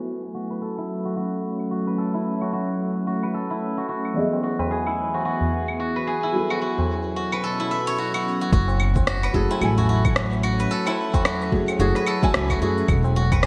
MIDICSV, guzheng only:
0, 0, Header, 1, 2, 480
1, 0, Start_track
1, 0, Key_signature, 3, "minor"
1, 0, Tempo, 545455
1, 1743, Time_signature, 4, 2, 24, 8
1, 11849, End_track
2, 0, Start_track
2, 0, Title_t, "Guzheng"
2, 0, Program_c, 0, 107
2, 0, Note_on_c, 0, 64, 76
2, 0, Note_on_c, 0, 66, 67
2, 0, Note_on_c, 0, 69, 85
2, 0, Note_on_c, 0, 71, 82
2, 299, Note_off_c, 0, 66, 0
2, 302, Note_on_c, 0, 66, 66
2, 439, Note_off_c, 0, 71, 0
2, 443, Note_on_c, 0, 71, 62
2, 539, Note_off_c, 0, 69, 0
2, 542, Note_on_c, 0, 69, 62
2, 682, Note_off_c, 0, 64, 0
2, 686, Note_on_c, 0, 64, 66
2, 921, Note_off_c, 0, 66, 0
2, 925, Note_on_c, 0, 66, 63
2, 1020, Note_off_c, 0, 66, 0
2, 1023, Note_on_c, 0, 66, 66
2, 1501, Note_off_c, 0, 66, 0
2, 1505, Note_on_c, 0, 66, 63
2, 1642, Note_off_c, 0, 71, 0
2, 1646, Note_on_c, 0, 71, 65
2, 1739, Note_off_c, 0, 69, 0
2, 1743, Note_on_c, 0, 69, 75
2, 1881, Note_off_c, 0, 64, 0
2, 1885, Note_on_c, 0, 64, 65
2, 2121, Note_off_c, 0, 66, 0
2, 2125, Note_on_c, 0, 66, 70
2, 2221, Note_off_c, 0, 66, 0
2, 2225, Note_on_c, 0, 66, 74
2, 2697, Note_off_c, 0, 66, 0
2, 2700, Note_on_c, 0, 66, 68
2, 2839, Note_off_c, 0, 71, 0
2, 2842, Note_on_c, 0, 71, 65
2, 2937, Note_off_c, 0, 69, 0
2, 2940, Note_on_c, 0, 69, 66
2, 3079, Note_off_c, 0, 64, 0
2, 3082, Note_on_c, 0, 64, 61
2, 3318, Note_off_c, 0, 66, 0
2, 3322, Note_on_c, 0, 66, 64
2, 3416, Note_off_c, 0, 66, 0
2, 3420, Note_on_c, 0, 66, 68
2, 3897, Note_off_c, 0, 66, 0
2, 3901, Note_on_c, 0, 66, 61
2, 4038, Note_off_c, 0, 71, 0
2, 4042, Note_on_c, 0, 71, 66
2, 4142, Note_on_c, 0, 68, 74
2, 4195, Note_off_c, 0, 69, 0
2, 4279, Note_off_c, 0, 64, 0
2, 4282, Note_on_c, 0, 64, 68
2, 4521, Note_off_c, 0, 66, 0
2, 4524, Note_on_c, 0, 66, 65
2, 4617, Note_off_c, 0, 66, 0
2, 4620, Note_on_c, 0, 66, 71
2, 5097, Note_off_c, 0, 66, 0
2, 5101, Note_on_c, 0, 66, 75
2, 5241, Note_off_c, 0, 71, 0
2, 5245, Note_on_c, 0, 71, 69
2, 5340, Note_off_c, 0, 68, 0
2, 5344, Note_on_c, 0, 68, 73
2, 5481, Note_off_c, 0, 64, 0
2, 5484, Note_on_c, 0, 64, 63
2, 5720, Note_off_c, 0, 66, 0
2, 5723, Note_on_c, 0, 66, 71
2, 5818, Note_off_c, 0, 66, 0
2, 5821, Note_on_c, 0, 66, 65
2, 6300, Note_off_c, 0, 66, 0
2, 6303, Note_on_c, 0, 66, 63
2, 6443, Note_off_c, 0, 71, 0
2, 6446, Note_on_c, 0, 71, 71
2, 6544, Note_on_c, 0, 69, 77
2, 6597, Note_off_c, 0, 68, 0
2, 6682, Note_off_c, 0, 64, 0
2, 6685, Note_on_c, 0, 64, 66
2, 6785, Note_on_c, 0, 76, 70
2, 6926, Note_on_c, 0, 73, 96
2, 7022, Note_off_c, 0, 66, 0
2, 7025, Note_on_c, 0, 66, 71
2, 7161, Note_off_c, 0, 66, 0
2, 7165, Note_on_c, 0, 66, 68
2, 7400, Note_off_c, 0, 66, 0
2, 7404, Note_on_c, 0, 66, 61
2, 7501, Note_off_c, 0, 66, 0
2, 7504, Note_on_c, 0, 66, 87
2, 7979, Note_off_c, 0, 66, 0
2, 7982, Note_on_c, 0, 66, 82
2, 8121, Note_off_c, 0, 71, 0
2, 8124, Note_on_c, 0, 71, 78
2, 8217, Note_off_c, 0, 69, 0
2, 8221, Note_on_c, 0, 69, 69
2, 8301, Note_off_c, 0, 76, 0
2, 8361, Note_off_c, 0, 64, 0
2, 8365, Note_on_c, 0, 64, 81
2, 8600, Note_off_c, 0, 66, 0
2, 8603, Note_on_c, 0, 66, 73
2, 8609, Note_off_c, 0, 73, 0
2, 8700, Note_off_c, 0, 66, 0
2, 8703, Note_on_c, 0, 66, 73
2, 9178, Note_off_c, 0, 66, 0
2, 9182, Note_on_c, 0, 66, 80
2, 9322, Note_off_c, 0, 71, 0
2, 9325, Note_on_c, 0, 71, 69
2, 9420, Note_off_c, 0, 69, 0
2, 9423, Note_on_c, 0, 69, 84
2, 9562, Note_off_c, 0, 64, 0
2, 9565, Note_on_c, 0, 64, 80
2, 9800, Note_off_c, 0, 66, 0
2, 9804, Note_on_c, 0, 66, 76
2, 9899, Note_off_c, 0, 66, 0
2, 9903, Note_on_c, 0, 66, 80
2, 10378, Note_off_c, 0, 66, 0
2, 10382, Note_on_c, 0, 66, 84
2, 10521, Note_off_c, 0, 71, 0
2, 10524, Note_on_c, 0, 71, 77
2, 10619, Note_off_c, 0, 69, 0
2, 10622, Note_on_c, 0, 69, 76
2, 10761, Note_off_c, 0, 64, 0
2, 10764, Note_on_c, 0, 64, 73
2, 11002, Note_off_c, 0, 66, 0
2, 11005, Note_on_c, 0, 66, 75
2, 11100, Note_off_c, 0, 66, 0
2, 11104, Note_on_c, 0, 66, 80
2, 11579, Note_off_c, 0, 66, 0
2, 11583, Note_on_c, 0, 66, 80
2, 11719, Note_off_c, 0, 71, 0
2, 11723, Note_on_c, 0, 71, 72
2, 11820, Note_on_c, 0, 68, 88
2, 11849, Note_off_c, 0, 64, 0
2, 11849, Note_off_c, 0, 66, 0
2, 11849, Note_off_c, 0, 68, 0
2, 11849, Note_off_c, 0, 69, 0
2, 11849, Note_off_c, 0, 71, 0
2, 11849, End_track
0, 0, End_of_file